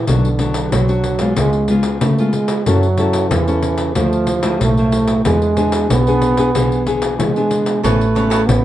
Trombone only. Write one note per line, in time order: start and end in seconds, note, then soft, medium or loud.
0.07 0.74 D3 medium
0.72 1.36 F#3 loud
1.36 1.72 G#3 loud
2.01 2.32 A3 medium
2.33 2.68 G#3 medium
2.66 3.32 F#3 loud
3.31 3.95 E3 medium
3.95 4.62 F3 loud
4.61 5.25 A3 loud
5.25 5.86 G#3 loud
5.90 6.89 B3 loud
7.19 7.85 G#3 loud
7.84 8.49 A3 medium
8.48 8.64 B3 loud